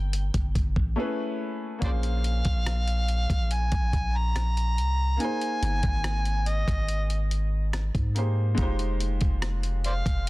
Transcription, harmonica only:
1.84 1.90 C5 medium
1.84 1.91 D5 medium
1.84 3.55 F5 loud
3.53 4.18 G#5 loud
4.17 5.23 A#5 loud
5.22 6.50 G#5 loud
6.48 7.32 D#5 medium
9.86 9.94 C5 medium
9.86 9.92 D5 medium
9.86 10.25 F5 medium

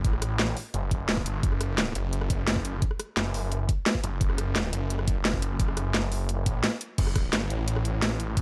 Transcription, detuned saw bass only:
0.05 0.55 A1 loud
0.74 1.25 F#1 medium
1.26 1.42 G1 loud
1.43 1.94 F#1 loud
1.95 2.81 F#1 loud
3.17 3.67 F#1 medium
4.04 4.19 F#1 loud
4.21 4.71 F#1 loud
4.73 5.58 F#1 medium
5.60 6.45 F#1 loud
6.46 6.64 A1 loud
6.98 7.32 F#1 loud
7.33 7.49 G1 loud
7.50 8.36 A1 loud
8.37 8.42 F#1 loud

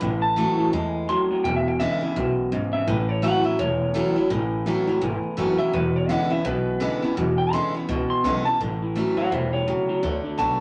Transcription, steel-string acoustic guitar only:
0.01 0.70 A2 medium
0.36 0.71 E3 medium
0.36 0.72 A3 loud
0.36 0.72 C#4 medium
0.36 0.72 E4 medium
0.73 1.07 G#3 medium
1.09 1.43 F#2 medium
1.45 2.14 E2 medium
1.80 2.01 D3 medium
1.80 2.01 G#3 medium
1.80 2.01 B3 loud
1.80 2.00 E4 loud
2.01 2.16 B3 soft
2.01 2.15 E4 medium
2.16 2.51 F#2 medium
2.52 2.86 G#2 medium
2.88 3.56 A2 medium
3.22 3.44 E3 medium
3.22 3.44 A3 medium
3.22 3.44 C#4 medium
3.22 3.43 E4 loud
3.44 3.59 C#4 soft
3.44 3.58 E4 medium
3.59 4.28 E2 medium
3.94 4.15 E3 medium
3.94 4.15 A3 medium
3.94 4.16 C#4 loud
3.94 4.15 E4 medium
4.16 4.31 C#4 soft
4.16 4.30 E4 medium
4.30 4.99 A2 medium
4.66 4.87 E3 medium
4.66 4.87 A3 medium
4.66 4.88 C#4 medium
4.66 4.86 E4 medium
4.87 5.02 C#4 soft
4.87 5.01 E4 medium
5.01 5.71 E2 medium
5.37 5.58 E3 medium
5.37 5.58 A3 medium
5.37 5.59 C#4 loud
5.37 5.57 E4 medium
5.59 5.74 C#4 medium
5.59 5.73 E4 medium
5.73 6.42 E2 medium
6.09 6.30 D3 medium
6.09 6.30 G#3 medium
6.09 6.31 B3 medium
6.09 6.29 E4 medium
6.30 6.45 B3 medium
6.30 6.44 E4 medium
6.45 7.14 B2 medium
6.80 7.01 D3 medium
6.80 7.01 G#3 loud
6.80 7.02 B3 medium
6.80 7.01 E4 medium
7.02 7.17 B3 medium
7.02 7.16 E4 medium
7.17 7.86 E2 medium
7.53 7.73 D3 medium
7.53 7.74 G#3 medium
7.53 7.74 B3 medium
7.53 7.73 E4 medium
7.74 7.89 B3 soft
7.74 7.88 E4 medium
7.89 8.57 B2 medium
8.24 8.45 D3 medium
8.24 8.45 G#3 medium
8.24 8.45 B3 medium
8.24 8.44 E4 medium
8.46 8.60 B3 soft
8.46 8.59 E4 medium
8.61 9.29 A2 medium
8.95 9.16 E3 medium
8.95 9.17 A3 medium
8.95 9.17 C#4 medium
8.95 9.16 E4 loud
9.17 9.32 C#4 soft
9.17 9.31 E4 medium
9.32 9.66 B2 medium
9.68 10.02 C#3 medium
10.03 10.36 D3 medium
10.38 10.59 D3 medium
10.38 10.59 A3 medium
10.38 10.60 D4 medium
10.38 10.58 F#4 medium

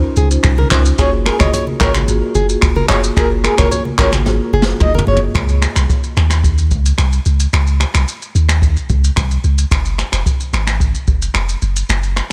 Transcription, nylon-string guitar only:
0.17 0.28 G#4 medium
0.59 0.68 A#4 medium
0.72 0.82 C5 medium
0.99 1.10 G#4 medium
1.26 1.37 A#4 medium
1.41 1.50 C#5 medium
1.54 1.64 C#5 medium
1.81 1.91 A#4 medium
2.35 2.46 G#4 medium
2.76 2.86 A#4 medium
2.90 3.00 C#5 medium
3.17 3.28 G#4 medium
3.44 3.55 A#4 medium
3.58 3.68 C#5 medium
3.71 3.82 C#5 medium
3.99 4.10 A#4 medium
4.54 4.64 G#4 medium
4.95 5.05 A#4 medium
5.08 5.19 C#5 medium

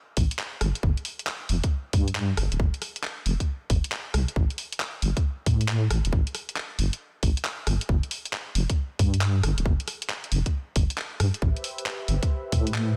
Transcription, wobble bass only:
0.17 0.29 A1 medium
0.61 0.73 G1 medium
0.83 0.95 G1 loud
1.49 1.61 F1 medium
1.93 2.35 G2 medium
2.38 2.49 G1 medium
2.52 2.58 D1 loud
2.60 2.71 G1 loud
3.26 3.37 F1 medium
3.70 3.81 G1 loud
4.14 4.25 C2 medium
4.36 4.48 A1 loud
5.02 5.14 G1 medium
5.46 5.88 A2 medium
5.90 6.02 A1 medium
6.05 6.11 E1 loud
6.13 6.24 A1 loud
6.79 6.90 G1 medium
7.23 7.34 A1 medium
7.67 7.78 G1 medium
7.89 8.01 G1 loud
8.55 8.67 F1 medium
8.99 9.41 G2 medium
9.43 9.55 G1 medium
9.58 9.64 D1 loud
9.66 9.77 G1 loud
10.32 10.43 F1 medium
10.76 10.87 G1 medium
11.20 11.31 G2 loud
11.42 11.53 A1 loud
12.08 12.20 G1 medium
12.52 12.94 A2 medium

